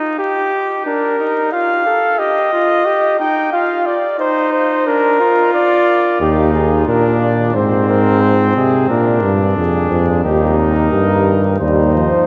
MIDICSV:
0, 0, Header, 1, 5, 480
1, 0, Start_track
1, 0, Key_signature, -3, "major"
1, 0, Tempo, 668151
1, 620, Time_signature, 4, 2, 24, 8
1, 4460, Tempo, 674916
1, 8768, End_track
2, 0, Start_track
2, 0, Title_t, "Cornet"
2, 0, Program_c, 0, 56
2, 618, Note_on_c, 0, 70, 82
2, 1069, Note_off_c, 0, 70, 0
2, 1093, Note_on_c, 0, 77, 94
2, 1572, Note_on_c, 0, 75, 97
2, 1582, Note_off_c, 0, 77, 0
2, 2289, Note_off_c, 0, 75, 0
2, 2293, Note_on_c, 0, 79, 87
2, 2527, Note_off_c, 0, 79, 0
2, 2531, Note_on_c, 0, 77, 89
2, 2773, Note_on_c, 0, 74, 81
2, 2784, Note_off_c, 0, 77, 0
2, 3009, Note_off_c, 0, 74, 0
2, 3014, Note_on_c, 0, 72, 101
2, 3249, Note_off_c, 0, 72, 0
2, 3253, Note_on_c, 0, 72, 84
2, 3492, Note_off_c, 0, 72, 0
2, 3497, Note_on_c, 0, 70, 94
2, 3968, Note_off_c, 0, 70, 0
2, 3976, Note_on_c, 0, 74, 97
2, 4449, Note_off_c, 0, 74, 0
2, 4460, Note_on_c, 0, 67, 68
2, 4692, Note_off_c, 0, 67, 0
2, 4696, Note_on_c, 0, 68, 70
2, 4932, Note_off_c, 0, 68, 0
2, 4935, Note_on_c, 0, 70, 72
2, 5171, Note_off_c, 0, 70, 0
2, 5175, Note_on_c, 0, 74, 69
2, 5410, Note_on_c, 0, 72, 71
2, 5420, Note_off_c, 0, 74, 0
2, 5650, Note_off_c, 0, 72, 0
2, 5654, Note_on_c, 0, 70, 71
2, 5890, Note_on_c, 0, 72, 80
2, 5900, Note_off_c, 0, 70, 0
2, 6130, Note_off_c, 0, 72, 0
2, 6134, Note_on_c, 0, 68, 70
2, 6368, Note_off_c, 0, 68, 0
2, 6373, Note_on_c, 0, 70, 70
2, 6678, Note_off_c, 0, 70, 0
2, 6850, Note_on_c, 0, 68, 67
2, 7304, Note_off_c, 0, 68, 0
2, 7330, Note_on_c, 0, 67, 70
2, 7565, Note_off_c, 0, 67, 0
2, 7570, Note_on_c, 0, 70, 68
2, 8281, Note_off_c, 0, 70, 0
2, 8293, Note_on_c, 0, 72, 68
2, 8768, Note_off_c, 0, 72, 0
2, 8768, End_track
3, 0, Start_track
3, 0, Title_t, "Trumpet"
3, 0, Program_c, 1, 56
3, 0, Note_on_c, 1, 63, 89
3, 129, Note_off_c, 1, 63, 0
3, 137, Note_on_c, 1, 67, 91
3, 608, Note_off_c, 1, 67, 0
3, 619, Note_on_c, 1, 62, 64
3, 854, Note_off_c, 1, 62, 0
3, 859, Note_on_c, 1, 63, 66
3, 1100, Note_on_c, 1, 65, 68
3, 1111, Note_off_c, 1, 63, 0
3, 1335, Note_off_c, 1, 65, 0
3, 1339, Note_on_c, 1, 69, 72
3, 1575, Note_on_c, 1, 67, 84
3, 1586, Note_off_c, 1, 69, 0
3, 1812, Note_off_c, 1, 67, 0
3, 1817, Note_on_c, 1, 65, 75
3, 2052, Note_on_c, 1, 67, 80
3, 2063, Note_off_c, 1, 65, 0
3, 2293, Note_off_c, 1, 67, 0
3, 2298, Note_on_c, 1, 63, 74
3, 2532, Note_off_c, 1, 63, 0
3, 2538, Note_on_c, 1, 65, 68
3, 2844, Note_off_c, 1, 65, 0
3, 3021, Note_on_c, 1, 63, 84
3, 3503, Note_on_c, 1, 62, 76
3, 3514, Note_off_c, 1, 63, 0
3, 3734, Note_off_c, 1, 62, 0
3, 3738, Note_on_c, 1, 65, 90
3, 4445, Note_off_c, 1, 65, 0
3, 4465, Note_on_c, 1, 63, 70
3, 4932, Note_off_c, 1, 63, 0
3, 4941, Note_on_c, 1, 62, 79
3, 5411, Note_off_c, 1, 62, 0
3, 5426, Note_on_c, 1, 60, 90
3, 6358, Note_off_c, 1, 60, 0
3, 6375, Note_on_c, 1, 62, 72
3, 7314, Note_off_c, 1, 62, 0
3, 7329, Note_on_c, 1, 63, 78
3, 8179, Note_off_c, 1, 63, 0
3, 8300, Note_on_c, 1, 63, 59
3, 8768, Note_off_c, 1, 63, 0
3, 8768, End_track
4, 0, Start_track
4, 0, Title_t, "Trombone"
4, 0, Program_c, 2, 57
4, 8298, Note_on_c, 2, 55, 68
4, 8523, Note_off_c, 2, 55, 0
4, 8539, Note_on_c, 2, 53, 69
4, 8768, Note_off_c, 2, 53, 0
4, 8768, End_track
5, 0, Start_track
5, 0, Title_t, "Bass trombone"
5, 0, Program_c, 3, 57
5, 4457, Note_on_c, 3, 39, 93
5, 4909, Note_off_c, 3, 39, 0
5, 4936, Note_on_c, 3, 46, 81
5, 5409, Note_off_c, 3, 46, 0
5, 5417, Note_on_c, 3, 44, 95
5, 6120, Note_off_c, 3, 44, 0
5, 6136, Note_on_c, 3, 48, 77
5, 6370, Note_off_c, 3, 48, 0
5, 6373, Note_on_c, 3, 46, 82
5, 6610, Note_on_c, 3, 43, 78
5, 6621, Note_off_c, 3, 46, 0
5, 6847, Note_off_c, 3, 43, 0
5, 6851, Note_on_c, 3, 41, 69
5, 7087, Note_off_c, 3, 41, 0
5, 7091, Note_on_c, 3, 41, 83
5, 7327, Note_off_c, 3, 41, 0
5, 7330, Note_on_c, 3, 39, 97
5, 7803, Note_off_c, 3, 39, 0
5, 7814, Note_on_c, 3, 43, 85
5, 8288, Note_off_c, 3, 43, 0
5, 8299, Note_on_c, 3, 39, 84
5, 8659, Note_off_c, 3, 39, 0
5, 8768, End_track
0, 0, End_of_file